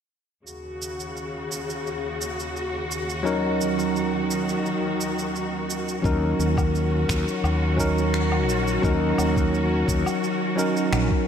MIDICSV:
0, 0, Header, 1, 5, 480
1, 0, Start_track
1, 0, Key_signature, -6, "minor"
1, 0, Tempo, 697674
1, 316, Time_signature, 4, 2, 24, 8
1, 7758, End_track
2, 0, Start_track
2, 0, Title_t, "Tine electric piano"
2, 0, Program_c, 0, 4
2, 440, Control_c, 0, 64, 127
2, 2223, Note_on_c, 0, 54, 91
2, 2230, Note_on_c, 0, 61, 76
2, 2237, Note_on_c, 0, 63, 84
2, 2244, Note_on_c, 0, 70, 91
2, 4103, Note_off_c, 0, 54, 0
2, 4107, Note_off_c, 0, 61, 0
2, 4111, Note_off_c, 0, 63, 0
2, 4114, Note_off_c, 0, 70, 0
2, 4144, Note_on_c, 0, 54, 81
2, 4152, Note_on_c, 0, 61, 78
2, 4159, Note_on_c, 0, 63, 75
2, 4166, Control_c, 0, 64, 0
2, 4167, Note_on_c, 0, 70, 90
2, 4272, Control_c, 0, 64, 127
2, 5323, Note_off_c, 0, 54, 0
2, 5327, Note_off_c, 0, 61, 0
2, 5330, Note_off_c, 0, 63, 0
2, 5334, Note_off_c, 0, 70, 0
2, 5345, Note_on_c, 0, 54, 81
2, 5352, Note_on_c, 0, 61, 80
2, 5360, Note_on_c, 0, 63, 71
2, 5368, Note_on_c, 0, 70, 98
2, 6043, Note_off_c, 0, 54, 0
2, 6047, Note_off_c, 0, 61, 0
2, 6051, Note_off_c, 0, 63, 0
2, 6054, Note_off_c, 0, 70, 0
2, 6065, Note_on_c, 0, 54, 81
2, 6073, Note_on_c, 0, 61, 77
2, 6080, Note_on_c, 0, 63, 74
2, 6087, Note_on_c, 0, 70, 89
2, 7243, Note_off_c, 0, 54, 0
2, 7247, Note_off_c, 0, 61, 0
2, 7250, Note_off_c, 0, 63, 0
2, 7254, Note_off_c, 0, 70, 0
2, 7263, Note_on_c, 0, 54, 83
2, 7271, Note_on_c, 0, 61, 77
2, 7277, Note_on_c, 0, 63, 80
2, 7285, Note_on_c, 0, 70, 92
2, 7758, Note_off_c, 0, 54, 0
2, 7758, Note_off_c, 0, 61, 0
2, 7758, Note_off_c, 0, 63, 0
2, 7758, Note_off_c, 0, 70, 0
2, 7758, End_track
3, 0, Start_track
3, 0, Title_t, "String section"
3, 0, Program_c, 1, 48
3, 313, Note_on_c, 1, 39, 64
3, 313, Note_on_c, 1, 49, 57
3, 313, Note_on_c, 1, 66, 68
3, 2216, Note_off_c, 1, 49, 0
3, 2235, Note_on_c, 1, 51, 62
3, 4127, Note_off_c, 1, 66, 0
3, 4128, Note_off_c, 1, 39, 0
3, 4137, Note_off_c, 1, 51, 0
3, 4156, Note_on_c, 1, 51, 68
3, 4156, Note_on_c, 1, 61, 59
3, 4156, Note_on_c, 1, 66, 77
3, 7758, Note_off_c, 1, 51, 0
3, 7758, Note_off_c, 1, 61, 0
3, 7758, Note_off_c, 1, 66, 0
3, 7758, End_track
4, 0, Start_track
4, 0, Title_t, "Fretless electric bass"
4, 0, Program_c, 2, 35
4, 4158, Note_on_c, 2, 39, 97
4, 4355, Note_off_c, 2, 39, 0
4, 4397, Note_on_c, 2, 39, 74
4, 4844, Note_off_c, 2, 39, 0
4, 4877, Note_on_c, 2, 39, 94
4, 4979, Note_off_c, 2, 39, 0
4, 5115, Note_on_c, 2, 39, 78
4, 5837, Note_off_c, 2, 39, 0
4, 5837, Note_on_c, 2, 34, 88
4, 6035, Note_off_c, 2, 34, 0
4, 6078, Note_on_c, 2, 39, 99
4, 6275, Note_off_c, 2, 39, 0
4, 6318, Note_on_c, 2, 39, 78
4, 6764, Note_off_c, 2, 39, 0
4, 6799, Note_on_c, 2, 39, 92
4, 6900, Note_off_c, 2, 39, 0
4, 7517, Note_on_c, 2, 34, 83
4, 7619, Note_off_c, 2, 34, 0
4, 7758, End_track
5, 0, Start_track
5, 0, Title_t, "Drums"
5, 324, Note_on_c, 9, 69, 27
5, 393, Note_off_c, 9, 69, 0
5, 564, Note_on_c, 9, 69, 64
5, 633, Note_off_c, 9, 69, 0
5, 688, Note_on_c, 9, 69, 39
5, 757, Note_off_c, 9, 69, 0
5, 803, Note_on_c, 9, 69, 28
5, 872, Note_off_c, 9, 69, 0
5, 1043, Note_on_c, 9, 69, 74
5, 1112, Note_off_c, 9, 69, 0
5, 1168, Note_on_c, 9, 69, 37
5, 1237, Note_off_c, 9, 69, 0
5, 1285, Note_on_c, 9, 69, 29
5, 1354, Note_off_c, 9, 69, 0
5, 1524, Note_on_c, 9, 69, 74
5, 1593, Note_off_c, 9, 69, 0
5, 1649, Note_on_c, 9, 69, 39
5, 1718, Note_off_c, 9, 69, 0
5, 1765, Note_on_c, 9, 69, 28
5, 1833, Note_off_c, 9, 69, 0
5, 2004, Note_on_c, 9, 69, 75
5, 2073, Note_off_c, 9, 69, 0
5, 2130, Note_on_c, 9, 69, 40
5, 2199, Note_off_c, 9, 69, 0
5, 2246, Note_on_c, 9, 69, 30
5, 2315, Note_off_c, 9, 69, 0
5, 2484, Note_on_c, 9, 69, 76
5, 2553, Note_off_c, 9, 69, 0
5, 2610, Note_on_c, 9, 69, 41
5, 2678, Note_off_c, 9, 69, 0
5, 2726, Note_on_c, 9, 69, 30
5, 2794, Note_off_c, 9, 69, 0
5, 2964, Note_on_c, 9, 69, 79
5, 3032, Note_off_c, 9, 69, 0
5, 3088, Note_on_c, 9, 69, 37
5, 3157, Note_off_c, 9, 69, 0
5, 3205, Note_on_c, 9, 69, 32
5, 3273, Note_off_c, 9, 69, 0
5, 3445, Note_on_c, 9, 69, 77
5, 3514, Note_off_c, 9, 69, 0
5, 3569, Note_on_c, 9, 69, 40
5, 3638, Note_off_c, 9, 69, 0
5, 3686, Note_on_c, 9, 69, 31
5, 3755, Note_off_c, 9, 69, 0
5, 3923, Note_on_c, 9, 69, 77
5, 3992, Note_off_c, 9, 69, 0
5, 4049, Note_on_c, 9, 69, 39
5, 4117, Note_off_c, 9, 69, 0
5, 4157, Note_on_c, 9, 36, 105
5, 4164, Note_on_c, 9, 69, 31
5, 4226, Note_off_c, 9, 36, 0
5, 4233, Note_off_c, 9, 69, 0
5, 4404, Note_on_c, 9, 69, 71
5, 4473, Note_off_c, 9, 69, 0
5, 4522, Note_on_c, 9, 36, 93
5, 4524, Note_on_c, 9, 77, 69
5, 4530, Note_on_c, 9, 69, 39
5, 4590, Note_off_c, 9, 36, 0
5, 4593, Note_off_c, 9, 77, 0
5, 4599, Note_off_c, 9, 69, 0
5, 4645, Note_on_c, 9, 69, 30
5, 4714, Note_off_c, 9, 69, 0
5, 4877, Note_on_c, 9, 36, 86
5, 4880, Note_on_c, 9, 26, 82
5, 4886, Note_on_c, 9, 69, 73
5, 4946, Note_off_c, 9, 36, 0
5, 4949, Note_off_c, 9, 26, 0
5, 4954, Note_off_c, 9, 69, 0
5, 5009, Note_on_c, 9, 69, 42
5, 5078, Note_off_c, 9, 69, 0
5, 5119, Note_on_c, 9, 77, 74
5, 5125, Note_on_c, 9, 69, 32
5, 5188, Note_off_c, 9, 77, 0
5, 5194, Note_off_c, 9, 69, 0
5, 5358, Note_on_c, 9, 36, 55
5, 5365, Note_on_c, 9, 69, 73
5, 5426, Note_off_c, 9, 36, 0
5, 5434, Note_off_c, 9, 69, 0
5, 5491, Note_on_c, 9, 69, 42
5, 5559, Note_off_c, 9, 69, 0
5, 5600, Note_on_c, 9, 26, 70
5, 5606, Note_on_c, 9, 69, 29
5, 5669, Note_off_c, 9, 26, 0
5, 5675, Note_off_c, 9, 69, 0
5, 5723, Note_on_c, 9, 77, 72
5, 5791, Note_off_c, 9, 77, 0
5, 5843, Note_on_c, 9, 69, 79
5, 5912, Note_off_c, 9, 69, 0
5, 5968, Note_on_c, 9, 69, 40
5, 6037, Note_off_c, 9, 69, 0
5, 6077, Note_on_c, 9, 36, 116
5, 6084, Note_on_c, 9, 69, 29
5, 6146, Note_off_c, 9, 36, 0
5, 6153, Note_off_c, 9, 69, 0
5, 6317, Note_on_c, 9, 77, 75
5, 6323, Note_on_c, 9, 69, 72
5, 6386, Note_off_c, 9, 77, 0
5, 6392, Note_off_c, 9, 69, 0
5, 6442, Note_on_c, 9, 36, 96
5, 6449, Note_on_c, 9, 69, 43
5, 6511, Note_off_c, 9, 36, 0
5, 6517, Note_off_c, 9, 69, 0
5, 6565, Note_on_c, 9, 69, 28
5, 6634, Note_off_c, 9, 69, 0
5, 6798, Note_on_c, 9, 36, 91
5, 6804, Note_on_c, 9, 69, 81
5, 6866, Note_off_c, 9, 36, 0
5, 6873, Note_off_c, 9, 69, 0
5, 6923, Note_on_c, 9, 77, 67
5, 6929, Note_on_c, 9, 69, 41
5, 6992, Note_off_c, 9, 77, 0
5, 6998, Note_off_c, 9, 69, 0
5, 7044, Note_on_c, 9, 69, 34
5, 7113, Note_off_c, 9, 69, 0
5, 7284, Note_on_c, 9, 69, 81
5, 7353, Note_off_c, 9, 69, 0
5, 7408, Note_on_c, 9, 69, 42
5, 7477, Note_off_c, 9, 69, 0
5, 7517, Note_on_c, 9, 26, 78
5, 7517, Note_on_c, 9, 77, 68
5, 7523, Note_on_c, 9, 69, 32
5, 7586, Note_off_c, 9, 26, 0
5, 7586, Note_off_c, 9, 77, 0
5, 7592, Note_off_c, 9, 69, 0
5, 7642, Note_on_c, 9, 36, 98
5, 7710, Note_off_c, 9, 36, 0
5, 7758, End_track
0, 0, End_of_file